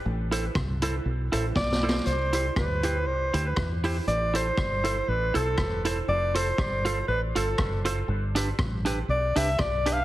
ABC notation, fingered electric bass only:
X:1
M:4/4
L:1/8
Q:"Swing" 1/4=119
K:Am
V:1 name="Fingered electric bass" clef=bass
A,,,2 C,,2 B,,, A,,, B,,,2 | C,,2 D,,2 C,, D,, E,,2 | A,,,2 G,,,2 A,,, B,,, E,,,2 | F,,,2 G,,,2 A,,, G,,, ^F,,,2 |
G,,,2 A,,,2 B,,, C,, B,,,2 |]